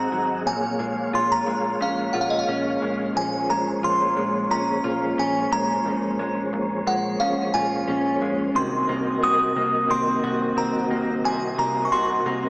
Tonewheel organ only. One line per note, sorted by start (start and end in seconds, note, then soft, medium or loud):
0.00 0.43 C4 medium
0.00 3.12 G#4 medium
0.00 0.43 D#5 medium
0.00 0.43 F#5 medium
0.45 3.13 A#3 medium
0.45 3.13 C#5 medium
0.45 3.13 F5 medium
3.15 8.51 F3 medium
3.15 8.51 A#3 medium
3.15 8.51 G#4 medium
3.15 8.51 C5 medium
3.15 8.51 C#5 medium
8.54 12.49 C3 medium
8.54 12.49 C4 medium
8.54 12.49 F#4 medium
8.54 12.49 A#4 medium
8.54 12.49 D#5 medium